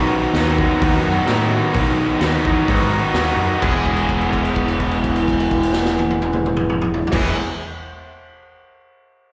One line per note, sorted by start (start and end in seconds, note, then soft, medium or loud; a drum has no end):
0.00 0.19 B1 loud
0.00 0.80 B2 loud
0.00 0.33 D#3 loud
0.00 0.35 F#3 loud
0.00 0.36 B3 loud
0.00 0.37 D#4 loud
0.33 0.65 D#2 loud
0.33 0.80 D#3 medium
0.33 0.61 F#3 medium
0.33 0.60 B3 medium
0.33 snare loud
0.33 open hi-hat medium
0.38 0.57 D#4 medium
0.57 0.83 B3 medium
0.57 0.83 D#4 medium
0.57 kick loud
0.61 0.81 F#3 medium
0.80 0.97 D#2 loud
0.80 1.28 B2 loud
0.80 1.24 D#3 medium
0.80 1.06 F#3 loud
0.80 1.05 B3 loud
0.80 kick loud
0.80 open hi-hat medium
0.85 1.02 D#4 loud
1.03 1.19 F#2 loud
1.03 1.28 B3 medium
1.03 1.29 D#4 medium
1.08 1.26 F#3 medium
1.26 1.58 A2 medium
1.26 1.73 D#3 medium
1.26 1.74 F#3 medium
1.26 1.75 B3 loud
1.26 snare loud
1.26 open hi-hat medium
1.30 1.75 D#4 medium
1.73 2.06 B1 loud
1.73 2.44 B2 loud
1.73 2.18 D#3 loud
1.73 2.19 F#3 loud
1.73 2.21 B3 loud
1.73 2.23 D#4 loud
1.73 kick loud
1.73 open hi-hat medium
2.20 2.36 D#2 loud
2.20 2.66 D#3 medium
2.20 2.47 F#3 medium
2.20 2.44 B3 medium
2.20 snare loud
2.20 open hi-hat medium
2.24 2.42 D#4 medium
2.43 2.61 E2 medium
2.43 2.68 B3 medium
2.43 2.68 D#4 medium
2.43 kick medium
2.48 2.66 F#3 medium
2.66 3.00 G#2 loud
2.66 3.14 B2 loud
2.66 3.13 D#3 loud
2.66 2.93 F#3 loud
2.66 2.90 B3 loud
2.66 2.89 D#4 loud
2.66 kick loud
2.66 open hi-hat medium
2.90 3.16 B3 medium
2.90 3.17 D#4 medium
2.94 3.15 F#3 medium
3.14 3.30 D#2 medium
3.14 3.60 D#3 medium
3.14 3.61 F#3 medium
3.14 3.61 B3 medium
3.14 snare loud
3.14 open hi-hat medium
3.18 3.62 D#4 medium
3.36 3.53 F#2 medium
3.60 7.02 E1 loud
3.60 7.10 E3 loud
3.60 7.11 G#3 loud
3.60 7.12 B3 loud
3.60 7.13 E4 loud
3.60 7.13 G#4 loud
3.60 kick loud
3.60 crash medium
3.85 kick medium
3.85 crash soft
3.96 crash soft
4.09 kick medium
4.09 crash medium
4.21 crash soft
4.33 kick medium
4.33 crash soft
4.45 crash soft
4.56 kick medium
4.56 crash medium
4.68 crash medium
4.80 kick medium
4.80 crash soft
4.91 crash soft
5.04 kick medium
5.04 crash medium
5.16 crash medium
5.28 kick medium
5.28 crash medium
5.40 crash medium
5.51 kick medium
5.51 crash medium
5.63 crash medium
5.73 snare loud
5.85 snare medium
5.99 high tom medium
6.10 high tom medium
6.22 high tom loud
6.33 mid tom loud
6.46 mid tom loud
6.57 mid tom loud
6.69 mid tom loud
6.82 mid tom medium
6.94 floor tom loud
7.07 floor tom loud
7.12 7.32 E1 loud
7.12 7.33 E3 loud
7.12 7.34 G#3 loud
7.12 7.34 B3 loud
7.12 7.34 E4 loud
7.12 7.35 G#4 loud
7.12 kick loud
7.12 snare loud
7.12 crash loud